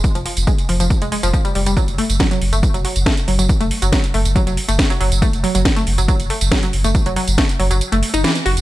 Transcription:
0.04 kick, closed hi-hat, tambourine
0.15 F1 F3, closed hi-hat, tambourine
0.26 F3, open hi-hat
0.37 F1, closed hi-hat, tambourine
0.47 G#3, kick, closed hi-hat, tambourine
0.58 closed hi-hat, tambourine
0.69 F1 F3, open hi-hat
0.80 F1 F3, closed hi-hat, tambourine
0.90 kick, closed hi-hat, tambourine
1.02 F1 G#3, closed hi-hat, tambourine
1.12 G#3, open hi-hat
1.23 F1 F3, closed hi-hat, tambourine
1.34 F3, kick, closed hi-hat, tambourine
1.45 G3, closed hi-hat, tambourine
1.55 F1 G3, open hi-hat
1.66 F1 G3, closed hi-hat, tambourine
1.77 F#3, kick, closed hi-hat, tambourine
1.88 F#1, closed hi-hat, tambourine
1.98 A3, open hi-hat
2.10 F#1, closed hi-hat, tambourine
2.20 F#3, kick, snare, closed hi-hat
2.31 F#3, closed hi-hat, tambourine
2.42 F#1, open hi-hat
2.53 F#1 A3, closed hi-hat, tambourine
2.63 kick, closed hi-hat, tambourine
2.74 F#1 F#3, closed hi-hat, tambourine
2.85 F#3, open hi-hat
2.96 F#1, closed hi-hat, tambourine
3.06 A3, kick, snare, closed hi-hat, tambourine
3.17 closed hi-hat, tambourine
3.28 F#1 F#3, open hi-hat
3.39 F#1 F#3, closed hi-hat, tambourine
3.49 kick, closed hi-hat, tambourine
3.61 F#1 A3, closed hi-hat, tambourine
3.71 open hi-hat
3.82 F#1 F#3, closed hi-hat, tambourine
3.93 F#3, kick, snare, closed hi-hat, tambourine
4.04 closed hi-hat, tambourine
4.14 F#1 A3, open hi-hat
4.25 F#1, closed hi-hat, tambourine
4.36 F#3, kick, closed hi-hat, tambourine
4.47 F#1 F#3, closed hi-hat, tambourine
4.57 open hi-hat
4.68 F#1 A3, closed hi-hat, tambourine
4.79 kick, snare, closed hi-hat, tambourine
4.90 F#3, closed hi-hat, tambourine
5.00 F#1 F#3, open hi-hat
5.12 F#1, closed hi-hat, tambourine
5.22 A3, kick, closed hi-hat, tambourine
5.33 F#1, closed hi-hat, tambourine
5.44 F#3, open hi-hat
5.55 F#1 F#3, closed hi-hat, tambourine
5.65 kick, snare, closed hi-hat, tambourine
5.76 A3, closed hi-hat, tambourine
5.87 F#1, open hi-hat
5.98 F#1 F#3, closed hi-hat, tambourine
6.08 F#3, kick, closed hi-hat, tambourine
6.20 F#1, closed hi-hat, tambourine
6.30 A3, open hi-hat
6.41 F#1, closed hi-hat, tambourine
6.52 F#3, kick, snare, closed hi-hat
6.63 F#3, closed hi-hat, tambourine
6.73 F#1, open hi-hat
6.84 F#1 A3, closed hi-hat, tambourine
6.95 kick, closed hi-hat, tambourine
7.06 F#1 F#3, closed hi-hat, tambourine
7.16 F#3, open hi-hat
7.28 F#1, closed hi-hat, tambourine
7.38 A3, kick, snare, closed hi-hat
7.49 closed hi-hat, tambourine
7.59 F#1 F#3, open hi-hat
7.71 F#1 F#3, closed hi-hat, tambourine
7.81 closed hi-hat, tambourine
7.92 F#1 A3, closed hi-hat, tambourine
8.03 open hi-hat
8.14 F#1 D#4, closed hi-hat, tambourine
8.24 E3, snare, closed hi-hat, tambourine
8.35 closed hi-hat, tambourine
8.46 F#1 F#4, open hi-hat
8.57 F#1, closed hi-hat, tambourine

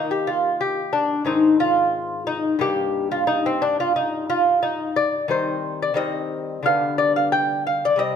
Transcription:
Already playing: D#3 A#3 D#4
0.11 G4
0.27 F4
0.61 G4
0.93 D4
1.25 G#2 D#3 C4 D#4
1.60 F4
2.27 D#4
2.59 G2 D#3 A#3 G4
3.11 F4
3.27 D#4
3.46 C4
3.62 D4
3.80 F4
3.96 D#4
4.30 F4
4.63 D#4
4.96 D5
5.28 D#3 G3 C4 C5
5.82 D5
5.94 D#3 G3 C4 D#5
6.63 D3 G3 B3 F5
6.98 D5
7.16 F5
7.32 G5
7.67 F5
7.85 D5
7.96 C3 G3 C4 D#5

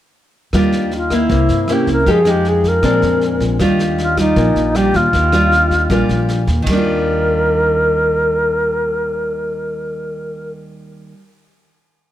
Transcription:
0.53 D#2 D#3 G3 D4 F4, kick, cross-stick, snare
0.72 snare
0.91 snare
0.96 F4
1.10 A#3 E4, kick, cross-stick, snare
1.15 E4
1.29 C2 C3, kick, snare
1.49 G2, snare
1.68 A#3 C#4 E4, cross-stick, snare
1.73 G4
1.87 C2, kick, snare
1.92 A#4
2.06 F2 F3 G#3 D#4 G4, kick, snare
2.11 G#4
2.25 G#3 D#4 G4, cross-stick, snare
2.30 G4
2.45 G#4, snare
2.64 kick, snare
2.68 A#4
2.83 A#1 A#2 G#3 C4 D4, kick, cross-stick, snare
3.02 F2, snare
3.21 snare
3.40 A#1, kick, snare
3.59 D#2 D#3 G3 D4 F4, kick, cross-stick, snare
3.79 snare
3.98 F4, snare
4.17 G3 D#4 F4, kick, cross-stick, snare
4.36 A#1 A#2, kick, snare
4.56 A#1, snare
4.75 G3 D4 F4 G4, cross-stick, snare
4.94 D#2 F4, kick, snare
5.13 D#2 D#3, kick, snare
5.32 G3 D4 F4, cross-stick, snare
5.52 snare
5.71 kick, snare
5.90 A#1 A#2 G3 D4 F4, kick, cross-stick, snare
6.09 A#1, snare
6.29 snare
6.47 D#2, kick, snare
6.62 D#3
6.67 D#2 G3 A#4, kick, ride bell
6.73 D4
6.77 F4

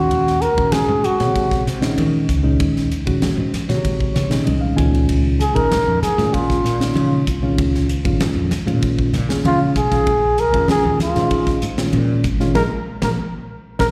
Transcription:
Already playing: A#2 D#3 G#3 C#4 F#4
0.11 D#2, ride, muted conga
0.27 snare
0.41 A#4, hi-hat pedal, ride, muted conga
0.57 A#1 A#2 D#3 G#3 C#4 F#4, kick, ride
0.72 G#4, snare, ride, high conga
0.88 G#2
1.04 F#4, muted fretless electric bass stroke, hi-hat pedal, ride
1.20 A#2 C3 D#3 G#3 G#4 C#5, snare, ride
1.35 kick, ride, muted conga
1.51 kick, snare
1.67 C3, snare, hi-hat pedal, ride
1.81 A#2 D#3 G#3 C#4 D#4, snare, ride
1.98 D#3, ride, high conga
2.29 C#2, kick, hi-hat pedal, ride, muted conga
2.43 A#2 D#3 G#3 C#4 D#4
2.60 D#2, kick, ride, muted conga
2.76 snare
2.92 hi-hat pedal, ride, muted conga
3.06 A#1 A#2 D#3 G#3 C#4 F#4, kick, ride
3.22 snare, ride, high conga
3.37 G#2
3.53 muted fretless electric bass stroke, snare, hi-hat pedal, ride, high conga
3.69 A#2 C3 D#3 G#3 F#4 C#5, snare, ride
3.85 kick, ride, muted conga
4.00 kick
4.14 C3 C#5, snare, hi-hat pedal, ride, high conga, low conga
4.29 A#2 D#3 G#3 C#4 D#4, snare, ride
4.45 C2 D#5, ride, high conga
4.61 F5
4.76 C#2 A#2 D#3 G#3 C#4 F4 G#5, kick, hi-hat pedal, ride
4.94 ride
5.09 C#2, ride, muted conga
5.40 G#4, hi-hat pedal, ride, muted conga
5.54 G#1 A#2 D#3 G#3 C#4 D#4 A#4, kick, ride
5.72 snare, ride, high conga
5.87 F2
6.02 G#4, muted fretless electric bass stroke, snare, hi-hat pedal, ride, high conga
6.17 A#2 D#3 G#3 C#4 F4, snare, ride
6.33 F4, kick, ride, muted conga
6.50 kick, snare
6.64 A#2, snare, hi-hat pedal, ride
6.80 A#2 D#3 G#3 C#4 D#4, snare, ride
6.96 C#3, ride, high conga
7.27 C2, kick, hi-hat pedal, ride, muted conga
7.42 A#2 D#3 G#3 C#4 F4
7.58 C#2, kick, ride, muted conga
7.75 snare
7.89 hi-hat pedal, ride, muted conga
8.04 G#1 A#2 D#3 G#3 C#4 F4, kick, ride
8.20 snare, ride, high conga
8.36 F2
8.51 muted fretless electric bass stroke, snare, hi-hat pedal, ride, high conga
8.66 A#2 D#3 G#3 C#4 F4, ride
8.82 kick, ride, muted conga
8.99 kick
9.14 A#2, snare, hi-hat pedal, ride, high conga, low conga
9.28 A#2 D#3 G#3 C#4 G#4, snare, ride
9.45 C#3 F4, ride, high conga
9.76 B1 G#4, kick, hi-hat pedal, ride, muted conga
9.91 A#2 D#3 G#3 C#4 F4, kick, snare, ride
10.07 A#1, kick, ride, muted conga
10.38 A#4, hi-hat pedal, ride, muted conga
10.53 F2 A#2 D#3 G#3 C#4 F4, kick, ride
10.68 G#4, snare, ride, high conga
10.85 D#2
11.00 F4, muted fretless electric bass stroke, snare, hi-hat pedal, ride, high conga
11.15 G#2 A#2 D#3 G#3 C#4 G#4, snare, ride
11.31 kick, ride, muted conga
11.47 kick, snare
11.62 G#2, hi-hat pedal, ride
11.78 A#2 D#3 G#3 C#4 F4, snare, ride
11.93 A#2, ride, high conga
12.24 G#1, kick, hi-hat pedal, ride, muted conga
12.40 A#2 D#3 G#3 C#4 F4, snare
12.55 A#1 F3 G#3 A#3 A#4, kick, snare, high conga
13.02 A#1 F3 G#3 A#3 A#4, kick, snare, high conga
13.79 A#1 F3 G#3 A#3 A#4, kick, snare, high conga

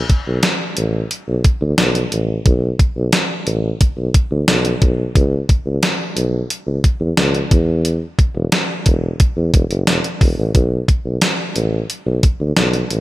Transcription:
0.10 kick, closed hi-hat
0.27 B1
0.43 snare, closed hi-hat, tambourine
0.77 A1, closed hi-hat
1.11 closed hi-hat
1.28 B1
1.44 kick, closed hi-hat
1.61 D2
1.78 B1, snare, closed hi-hat, tambourine
1.95 closed hi-hat
2.12 A1, closed hi-hat
2.46 B1, kick, closed hi-hat
2.79 kick, closed hi-hat
2.96 B1
3.12 snare, closed hi-hat, tambourine
3.46 A1, closed hi-hat
3.81 kick, closed hi-hat
3.97 B1
4.14 kick, closed hi-hat
4.31 D2
4.48 B1, snare, closed hi-hat, tambourine
4.65 closed hi-hat
4.82 B1, kick, closed hi-hat
5.15 C#2, kick, closed hi-hat
5.49 kick, closed hi-hat
5.66 C#2
5.83 snare, closed hi-hat, tambourine
6.16 B1, closed hi-hat
6.50 closed hi-hat
6.66 C#2
6.84 kick, closed hi-hat
7.00 E2
7.17 C#2, snare, closed hi-hat, tambourine
7.35 closed hi-hat
7.51 E2, kick, closed hi-hat
7.85 closed hi-hat
8.19 kick, closed hi-hat
8.35 E1
8.52 snare, closed hi-hat, tambourine
8.86 E1, kick, closed hi-hat
9.20 kick, closed hi-hat
9.36 E2
9.54 E1, kick, closed hi-hat
9.70 F#1, closed hi-hat
9.87 E1, snare, closed hi-hat, tambourine
10.04 closed hi-hat
10.21 E1, kick, open hi-hat
10.38 A1
10.55 B1, kick, closed hi-hat
10.88 kick, closed hi-hat
11.05 B1
11.21 snare, closed hi-hat, tambourine
11.56 A1, closed hi-hat
11.90 closed hi-hat
12.06 B1
12.23 kick, closed hi-hat
12.40 D2
12.56 B1, snare, closed hi-hat, tambourine
12.73 closed hi-hat
12.90 A1, closed hi-hat

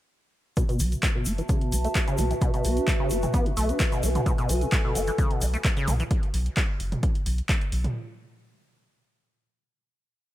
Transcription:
0.57 B2 F#4, kick, closed hi-hat, shaker
0.69 B2, closed hi-hat, shaker
0.77 B1 F#3 E5, open hi-hat, shaker
0.91 B2 A5, closed hi-hat, shaker
1.02 B2 B4, kick, clap, closed hi-hat, shaker
1.15 B2
1.25 F#1 B3, open hi-hat, shaker
1.38 E3, closed hi-hat, shaker
1.49 C#3, kick, closed hi-hat, shaker
1.61 B2, closed hi-hat
1.72 B1 B3, open hi-hat, shaker
1.84 A3, closed hi-hat, shaker
1.95 B2, kick, clap, closed hi-hat, shaker
2.08 C#3, closed hi-hat, shaker
2.18 B1 B3, mid tom, open hi-hat, shaker
2.31 E3, closed hi-hat, shaker
2.41 B2, kick, closed hi-hat, shaker
2.54 B2, closed hi-hat, shaker
2.64 B1 B3, open hi-hat, shaker
2.77 D4, closed hi-hat, shaker
2.88 A2, kick, clap, closed hi-hat, shaker
3.00 C#3
3.10 F#1 B3, open hi-hat, shaker
3.23 E3, closed hi-hat, mid tom, shaker
3.34 B3, kick, closed hi-hat, shaker
3.46 B2, closed hi-hat
3.57 B1 A3, open hi-hat, shaker
3.69 D4, closed hi-hat, shaker
3.79 B2 G#5, kick, clap, closed hi-hat, shaker
3.92 B2, closed hi-hat, shaker
4.03 B1 B3, open hi-hat, shaker
4.15 D3, closed hi-hat, mid tom, shaker
4.26 B2 A4, kick, closed hi-hat, shaker
4.38 B2, closed hi-hat, shaker
4.49 B1 F#3, open hi-hat, shaker
4.61 B2, closed hi-hat, shaker
4.72 B2, kick, clap, closed hi-hat, shaker
4.85 B2
4.95 F#1 B3, open hi-hat, shaker
5.07 E3, closed hi-hat, shaker
5.18 C#3, kick, closed hi-hat, shaker
5.31 B2, closed hi-hat
5.41 B1 B3, open hi-hat, shaker
5.54 A3, closed hi-hat, shaker
5.64 B2, kick, clap, closed hi-hat, shaker
5.77 C#3, closed hi-hat, shaker
5.88 B1 B3, mid tom, open hi-hat, shaker
5.99 E3, closed hi-hat, shaker
6.11 kick, closed hi-hat
6.23 closed hi-hat
6.34 B1, open hi-hat
6.46 closed hi-hat
6.57 kick, clap, closed hi-hat
6.80 F#1, open hi-hat
6.92 closed hi-hat, mid tom
7.03 kick, closed hi-hat
7.15 closed hi-hat
7.26 B1, open hi-hat
7.38 closed hi-hat
7.49 kick, clap, closed hi-hat
7.61 closed hi-hat
7.72 B1, open hi-hat
7.84 closed hi-hat, mid tom

